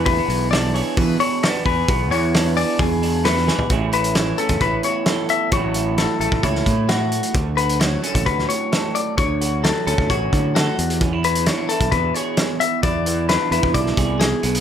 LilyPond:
<<
  \new Staff \with { instrumentName = "Clean electric guitar" } { \time 4/4 \key e \mixolydian \tempo 4 = 131 b'4 d''8 cis''8 b'8 cis''8 d''8 b'8~ | b'8 cis''4 d''8 gis'4 b'4 | r8 b'8 cis''8 a'8 b'8 cis''4 e''8 | cis''4 a'8 a'8 cis''4 fis'4 |
r8 b'8 cis''8 a'8 b'8 cis''4 d''8 | cis''4 a'8 a'8 cis''4 fis'4 | r8 b'8 cis''8 a'8 b'8 cis''4 e''8 | d''4 b'8 b'8 d''4 gis'4 | }
  \new Staff \with { instrumentName = "Clean electric guitar" } { \time 4/4 \key e \mixolydian << { <e a d' gis'>16 b8. d'8 gis'4 d'8 b8 gis'8 | b4 d'8 gis'4 d'8 a16 b16 gis'8 | <e cis' e' gis'>8 e'4 cis'8 e'4 a'4 | <fis a e' fis'>8 e'4 a8 e'4 fis'4 |
r8 fis'4 cis'8 fis'4 a'4 | r8 fis'4 cis'8 fis'4 a'8 r8 | cis'16 e'8. d'8 e'4 gis'4 r8 | e'4 d'8 e'4 gis'4 r8 | } \\ { e,8 e4. b,4. e,8~ | e,8 e4. b,4. e,8 | a,4 e4. e,4. | a,4 fis4. a,4. |
d4 fis4. a,4. | d4 fis4. a,4 e,8~ | e,8 e4. b,4. e,8~ | e,8 e4. b,4. b,8 | } >> }
  \new Staff \with { instrumentName = "Fingered electric bass" } { \clef bass \time 4/4 \key e \mixolydian e,8 b,,4. e8 r4 e,8 | b,,8 e,4. e,2 | a,,4.~ a,,16 e,16 a,,8 r4. | a,,4. a,,16 a,,16 cis,8 a,4. |
d,4.~ d,16 a,,16 d,8 r4. | d,4. d,16 d,16 a,,8 d4 e,8~ | e,4. r16 b,,16 e,8 r4. | e,4. e,16 e,16 b,,8 c,4 b,,8 | }
  \new DrumStaff \with { instrumentName = "Drums" } \drummode { \time 4/4 <hho bd>8 hho8 <hho sn>8 hho8 <hho bd>8 hho8 <hho sn>8 <hho bd>8 | <hho bd>8 hho8 <hho sn>8 hho8 <hho bd>8 hho8 <hho sn>16 sn16 sn16 tomfh16 | <hh bd>8 hh16 hh16 <hh sn>8 hh16 <hh bd>16 <hh bd>8 hh8 <hh sn>8 hh8 | <hh bd>8 hh8 <hh sn>8 hh16 bd16 <hh bd>16 sn16 <hh bd>8 <hh sn>8 hh16 hh16 |
<hh bd>8 hh16 hh16 <hh sn>8 hh16 <hh bd>16 <hh bd>16 sn16 hh8 <hh sn>8 hh8 | <hh bd>8 hh8 <hh sn>8 hh16 bd16 <hh bd>8 <hh bd>8 <hh sn>8 hh16 hh16 | <hh bd>8 hh16 hh16 <hh sn>8 hh16 <hh bd>16 <hh bd>8 hh8 <hh sn>8 hh8 | <hh bd>8 hh8 <hh sn>8 hh16 bd16 <hh bd>16 sn16 <hh bd>8 <hh sn>8 hh16 hh16 | }
>>